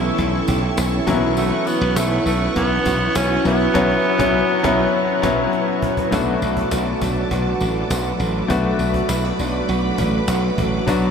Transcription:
0.00 1.07 E3 medium
0.00 1.03 G3 medium
0.00 1.04 A3 medium
0.00 1.67 B3 medium
0.00 0.19 C#4 medium
0.00 1.04 C#4 medium
0.00 0.44 E4 medium
0.00 1.04 E4 medium
0.00 6.09 E4 medium
0.00 0.48 G4 medium
0.00 1.04 A4 medium
0.00 1.03 A5 medium
0.00 6.09 C#6 medium
0.18 0.40 B1 loud
0.18 0.78 C#4 medium
0.18 cajon bass medium
0.18 cajon slap soft
0.48 0.69 B1 loud
0.48 1.14 G4 medium
0.48 cajon bass medium
0.48 tambourine medium
0.77 0.99 B1 loud
0.77 1.70 C#4 medium
0.77 cajon slap loud
0.77 tambourine medium
1.07 1.50 B1 loud
1.07 1.36 E3 medium
1.07 3.41 F#3 medium
1.07 1.14 A#3 medium
1.07 3.41 C#4 medium
1.07 3.42 E4 medium
1.07 6.09 B4 medium
1.07 6.09 F#5 medium
1.07 cajon bass loud
1.07 tambourine soft
1.14 3.43 B3 medium
1.37 3.74 E3 medium
1.37 1.69 A3 medium
1.37 2.86 F#4 medium
1.37 cajon slap medium
1.37 tambourine medium
1.67 1.98 B3 medium
1.67 2.26 B3 medium
1.67 cajon slap soft
1.67 tambourine soft
1.81 1.92 B1 loud
1.96 2.18 B1 loud
1.96 2.26 A3 medium
1.96 2.55 C#4 medium
1.96 cajon slap loud
1.96 tambourine medium
2.26 2.47 B1 medium
2.26 2.54 A3 medium
2.26 3.45 B3 medium
2.26 cajon slap soft
2.26 tambourine soft
2.56 2.77 B1 loud
2.56 3.18 B3 loud
2.56 3.15 C#4 medium
2.56 cajon bass medium
2.56 cajon slap medium
2.85 3.07 B1 loud
2.85 3.75 F#4 medium
2.85 cajon bass medium
2.85 tambourine medium
3.15 3.37 B1 loud
3.15 3.75 C#4 medium
3.15 3.46 C#4 loud
3.15 cajon slap loud
3.15 tambourine medium
3.44 3.66 B1 loud
3.44 3.72 F#3 medium
3.44 3.73 B3 medium
3.44 4.46 B3 medium
3.44 5.50 B3 loud
3.44 3.74 C#4 medium
3.44 3.75 E4 medium
3.44 tambourine soft
3.74 3.95 B1 loud
3.74 3.95 E3 loud
3.74 3.94 F#3 loud
3.74 3.95 B3 loud
3.74 3.95 C#4 loud
3.74 3.96 E4 loud
3.74 3.96 F#4 loud
3.74 cajon bass loud
3.74 cajon slap loud
4.18 4.40 B1 loud
4.18 4.39 F#3 loud
4.18 4.39 B3 loud
4.18 4.40 C#4 loud
4.18 4.40 E4 medium
4.18 cajon bass loud
4.18 cajon slap loud
4.63 4.84 B1 loud
4.63 4.84 F#3 loud
4.63 4.84 B3 loud
4.63 4.84 C#4 loud
4.63 4.85 E4 loud
4.63 cajon bass loud
4.63 cajon slap loud
5.22 5.44 B1 loud
5.22 5.43 F#3 loud
5.22 5.43 B3 loud
5.22 5.44 C#4 loud
5.22 5.44 E4 loud
5.22 cajon bass loud
5.22 cajon slap loud
5.53 cajon slap medium
5.82 cajon bass loud
5.97 cajon bass medium
6.11 6.34 B1 loud
6.11 11.11 F#3 medium
6.11 8.45 A3 medium
6.11 6.41 A3 medium
6.11 8.46 B3 medium
6.11 8.46 D4 medium
6.11 6.72 F#4 medium
6.11 8.47 F#4 medium
6.11 11.11 B4 medium
6.11 8.48 A5 medium
6.11 11.11 D6 medium
6.11 cajon bass loud
6.11 tambourine medium
6.42 6.63 B1 medium
6.42 7.60 A3 medium
6.42 cajon slap soft
6.42 tambourine soft
6.57 cajon bass medium
6.71 6.93 B1 loud
6.71 7.31 F#4 medium
6.71 cajon slap loud
6.71 tambourine medium
7.01 7.23 B1 medium
7.01 9.39 D4 medium
7.01 cajon bass loud
7.01 tambourine soft
7.31 7.52 B1 medium
7.31 7.90 F#4 medium
7.31 cajon bass medium
7.31 cajon slap soft
7.31 tambourine soft
7.61 7.82 A1 medium
7.61 8.20 A3 medium
7.61 cajon slap soft
7.61 tambourine soft
7.76 cajon slap soft
7.90 8.12 B1 medium
7.90 8.50 F#4 medium
7.90 cajon slap loud
7.90 tambourine medium
8.20 8.41 A1 loud
8.20 8.49 A3 medium
8.20 cajon slap soft
8.20 tambourine soft
8.48 8.71 B1 medium
8.48 10.83 A3 medium
8.48 8.79 A3 medium
8.48 10.83 B3 medium
8.48 10.84 D4 medium
8.48 9.09 F#4 medium
8.48 10.84 F#4 medium
8.48 10.86 B5 medium
8.48 cajon bass loud
8.48 tambourine medium
8.79 9.01 B1 medium
8.79 9.98 A3 medium
8.79 cajon slap soft
8.79 tambourine soft
8.94 cajon bass medium
9.09 9.31 B1 loud
9.09 9.25 E4 medium
9.09 cajon slap loud
9.09 tambourine medium
9.25 9.68 F#4 medium
9.39 9.61 B1 loud
9.39 11.11 D4 medium
9.39 cajon slap soft
9.39 tambourine soft
9.68 9.90 B1 loud
9.68 10.28 F#4 medium
9.68 cajon slap soft
9.68 tambourine soft
9.98 10.20 A1 medium
9.98 10.57 A3 medium
9.98 cajon bass medium
9.98 tambourine medium
10.13 cajon slap soft
10.28 10.49 B1 medium
10.28 10.88 F#4 medium
10.28 cajon slap loud
10.28 tambourine medium
10.58 10.79 A1 medium
10.58 10.94 A3 medium
10.58 cajon bass medium
10.86 11.09 B1 loud
10.86 11.11 F#3 medium
10.86 11.11 B3 medium
10.86 11.11 D4 medium
10.86 11.11 F#4 medium
10.86 11.11 F#5 medium
10.86 cajon bass loud
10.86 tambourine medium

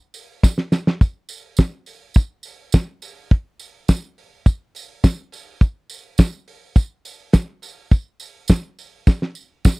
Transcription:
0.14 open hi-hat medium
0.14 tambourine medium
0.43 kick loud
0.43 snare medium
0.43 tambourine loud
0.58 snare medium
0.72 snare medium
0.72 tambourine medium
0.87 snare medium
1.01 kick loud
1.01 closed hi-hat medium
1.01 tambourine soft
1.29 open hi-hat medium
1.29 tambourine medium
1.57 kick loud
1.57 snare loud
1.57 closed hi-hat medium
1.57 tambourine medium
1.86 open hi-hat medium
1.86 tambourine soft
2.14 kick loud
2.14 closed hi-hat medium
2.14 tambourine medium
2.43 open hi-hat medium
2.43 tambourine medium
2.72 kick loud
2.72 snare loud
2.72 closed hi-hat medium
2.72 tambourine loud
3.02 open hi-hat medium
3.02 tambourine medium
3.31 kick loud
3.31 closed hi-hat medium
3.59 open hi-hat medium
3.59 tambourine medium
3.88 kick loud
3.88 snare loud
3.88 closed hi-hat medium
3.88 tambourine loud
4.18 open hi-hat medium
4.46 kick loud
4.46 closed hi-hat medium
4.46 tambourine medium
4.75 open hi-hat medium
4.75 tambourine medium
5.04 kick loud
5.04 snare loud
5.04 closed hi-hat medium
5.04 tambourine loud
5.32 open hi-hat medium
5.32 tambourine soft
5.61 kick loud
5.61 closed hi-hat medium
5.61 tambourine soft
5.89 open hi-hat medium
5.89 tambourine medium
6.18 kick loud
6.18 snare loud
6.18 closed hi-hat medium
6.18 tambourine medium
6.48 open hi-hat medium
6.76 kick loud
6.76 closed hi-hat medium
6.76 tambourine medium
7.05 open hi-hat medium
7.05 tambourine medium
7.33 kick loud
7.33 snare loud
7.33 closed hi-hat medium
7.33 tambourine loud
7.62 open hi-hat medium
7.62 tambourine medium
7.91 kick loud
7.91 closed hi-hat medium
7.91 tambourine soft
8.20 open hi-hat medium
8.20 tambourine medium
8.48 kick loud
8.48 snare loud
8.48 closed hi-hat medium
8.48 tambourine loud
8.79 open hi-hat medium
8.79 tambourine soft
9.07 kick loud
9.07 snare medium
9.07 tambourine medium
9.22 snare medium
9.35 tambourine medium
9.65 kick loud
9.65 snare medium
9.65 tambourine loud

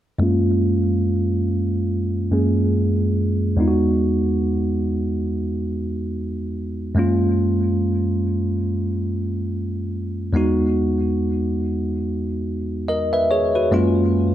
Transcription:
0.19 2.27 F#2 medium
0.19 2.27 G#3 medium
0.19 2.28 A#3 medium
0.19 2.28 C#4 medium
0.23 2.29 F4 medium
2.31 3.58 F#2 medium
2.31 3.57 G#3 soft
2.31 3.59 A#3 soft
2.31 3.59 C#4 soft
2.31 3.59 G#4 medium
3.57 6.91 E2 medium
3.57 6.92 G#3 medium
3.57 6.93 B3 medium
3.57 6.93 D#4 medium
3.61 3.67 F4 medium
3.68 6.97 F#4 medium
6.95 10.30 F#2 medium
6.95 10.30 G#3 medium
6.95 10.31 A#3 medium
6.95 10.31 C#4 medium
6.99 10.32 F4 medium
10.33 13.67 E2 medium
10.33 13.68 G#3 medium
10.33 13.69 B3 medium
10.33 13.69 D#4 medium
10.37 12.85 F#4 medium
12.88 13.12 A#4 medium
12.88 13.11 D#5 medium
13.13 13.30 B4 medium
13.13 13.29 E5 medium
13.31 13.54 G#4 medium
13.31 13.54 C#5 medium
13.55 13.95 F#4 medium
13.55 13.95 B4 medium
13.72 14.35 F#2 medium
13.72 14.35 G#3 medium
13.72 14.35 A#3 medium
13.72 14.35 C#4 medium
13.72 14.35 F4 medium

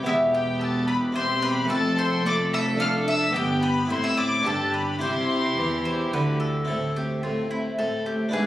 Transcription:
0.03 1.66 E1 medium
0.03 1.66 E2 medium
0.03 1.10 B3 medium
0.03 1.11 E4 medium
0.03 0.31 E4 medium
0.03 1.11 G4 medium
0.03 0.15 E5 loud
0.07 1.12 B3 medium
0.33 0.59 G4 medium
0.33 0.60 G5 loud
0.60 0.86 A4 medium
0.60 0.88 A5 loud
0.88 1.13 B4 medium
0.88 0.96 B5 loud
1.12 1.65 C4 medium
1.12 1.69 C4 medium
1.12 1.67 E4 medium
1.12 1.69 G4 medium
1.12 1.41 C5 loud
1.12 1.42 C6 loud
1.41 1.68 B4 loud
1.41 1.69 B5 loud
1.65 2.74 A3 medium
1.65 2.75 C4 medium
1.65 2.75 A4 medium
1.65 2.79 A4 medium
1.70 3.35 F1 medium
1.70 3.30 F2 medium
1.70 3.35 F2 medium
1.70 2.24 C4 medium
1.70 1.95 A4 loud
1.70 1.97 A5 loud
1.97 2.23 C5 medium
1.97 2.25 C6 loud
2.25 2.80 A3 medium
2.25 2.51 D5 loud
2.25 2.33 D6 loud
2.53 2.79 E5 loud
2.53 2.61 E6 loud
2.76 3.31 A3 medium
2.76 3.31 D4 medium
2.76 3.32 A4 medium
2.76 3.05 F5 loud
2.80 3.35 D4 medium
2.80 3.34 A4 medium
2.80 2.89 F6 loud
3.08 3.33 E5 loud
3.08 3.35 E6 loud
3.31 3.86 G1 medium
3.31 3.86 G2 medium
3.31 3.86 B3 medium
3.31 3.87 D4 medium
3.31 3.87 G4 medium
3.31 3.61 G5 loud
3.35 3.86 G2 medium
3.35 3.86 B3 medium
3.35 3.86 G4 medium
3.35 3.61 G4 loud
3.63 3.88 B4 medium
3.63 3.90 B5 loud
3.85 4.41 C4 medium
3.85 4.42 E4 medium
3.89 4.45 A1 medium
3.89 4.45 A2 medium
3.89 4.41 A2 medium
3.89 4.45 C4 medium
3.89 4.45 E4 medium
3.89 4.03 C5 medium
3.89 4.04 C6 loud
4.04 4.16 E5 loud
4.04 4.18 E6 loud
4.17 4.43 D5 loud
4.17 4.45 D6 loud
4.43 5.00 G1 medium
4.43 5.00 G2 medium
4.43 4.97 G2 medium
4.43 4.98 D4 medium
4.43 5.01 D4 medium
4.43 4.99 G4 medium
4.43 5.00 G4 medium
4.43 4.71 A4 medium
4.43 4.73 A5 loud
4.73 4.99 B4 medium
4.73 5.01 B5 medium
4.99 5.56 C2 medium
4.99 5.56 C3 medium
4.99 5.53 C3 medium
4.99 6.64 E4 medium
4.99 6.46 E4 medium
4.99 6.64 G4 medium
4.99 6.46 G4 medium
4.99 5.84 C5 medium
4.99 6.11 C6 loud
5.57 6.12 E2 medium
5.57 6.12 E3 medium
5.57 6.09 E3 medium
5.85 6.11 C5 medium
6.13 6.68 D2 medium
6.13 6.68 D3 medium
6.13 6.65 D3 medium
6.13 6.39 B4 medium
6.40 6.92 A4 medium
6.65 7.15 A2 medium
6.65 8.27 C4 soft
6.65 8.28 E4 soft
6.65 8.29 A4 soft
6.69 7.14 A2 soft
6.69 6.95 A3 soft
6.69 6.95 C4 soft
6.69 6.95 E5 soft
6.96 7.22 A3 soft
6.96 7.23 C4 soft
6.96 7.22 G4 medium
6.96 7.23 E5 soft
7.23 7.70 A2 medium
7.23 7.70 A2 soft
7.23 7.50 A3 soft
7.23 7.50 C4 soft
7.23 7.49 F4 medium
7.23 7.50 E5 soft
7.51 7.77 A3 soft
7.51 7.78 C4 soft
7.51 7.76 E4 medium
7.51 7.77 E5 soft
7.78 8.24 A2 soft
7.78 8.04 A3 soft
7.78 8.05 C4 soft
7.78 8.04 A4 medium
7.78 8.05 E5 soft
8.06 8.33 A3 soft
8.06 8.33 C4 soft
8.06 8.31 G4 medium
8.06 8.32 E5 soft
8.29 8.46 D4 soft
8.29 8.46 E4 soft
8.29 8.46 B4 soft
8.33 8.46 G#2 medium
8.33 8.46 G#2 soft
8.33 8.46 B3 soft
8.33 8.46 D4 soft
8.33 8.46 G#4 medium
8.33 8.46 E5 soft

